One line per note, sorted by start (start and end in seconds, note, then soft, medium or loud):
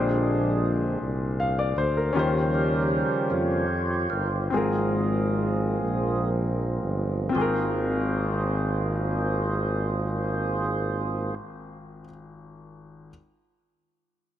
0.00 0.98 A#1 medium
0.00 0.98 A#2 medium
0.00 0.98 D3 soft
0.00 0.99 F3 soft
0.00 0.99 G#3 soft
0.00 0.99 C4 soft
0.00 0.99 D4 soft
0.00 2.10 D4 medium
0.00 2.11 G4 medium
0.00 0.71 G#4 medium
0.00 2.12 G#4 soft
0.00 1.39 C5 medium
1.01 1.73 C2 medium
1.40 1.58 F5 medium
1.59 1.77 D5 medium
1.76 2.12 D2 medium
1.76 1.96 C5 medium
1.97 2.33 A#4 medium
2.13 3.02 D#2 medium
2.13 3.29 C#3 soft
2.13 3.27 D#3 medium
2.13 3.29 F3 soft
2.13 3.29 G3 soft
2.13 4.47 C#4 medium
2.13 4.48 F4 medium
2.13 4.49 G4 medium
2.13 4.49 C5 soft
2.19 4.50 C5 medium
2.54 3.67 C#4 medium
2.54 3.29 G4 medium
2.54 3.34 A#4 medium
3.30 4.07 F2 medium
3.30 3.66 C#3 soft
3.30 3.66 F3 soft
3.30 3.66 G3 soft
3.30 3.67 A#3 soft
3.30 4.48 F4 medium
3.30 4.48 G4 medium
3.30 4.14 C#5 medium
4.10 4.49 G1 medium
4.10 4.29 A#4 medium
4.50 5.86 G#1 medium
4.50 5.82 G#2 medium
4.50 7.28 C4 medium
4.50 7.31 F4 soft
4.50 7.32 G#4 medium
4.54 7.32 F3 soft
4.54 7.32 A#3 soft
4.54 7.33 C4 soft
4.54 6.31 F4 soft
4.54 6.31 G#4 medium
4.54 7.33 A#4 medium
5.84 6.78 A#1 medium
6.82 7.31 G1 medium
7.29 11.99 C4 medium
7.29 12.03 F4 medium
7.34 11.34 G#1 medium
7.34 12.05 G#1 medium
7.34 11.35 A#3 medium
7.34 11.34 F4 medium
7.34 11.35 G#4 medium
7.34 12.06 G#4 medium
7.34 11.35 C5 medium
7.41 12.08 A#4 medium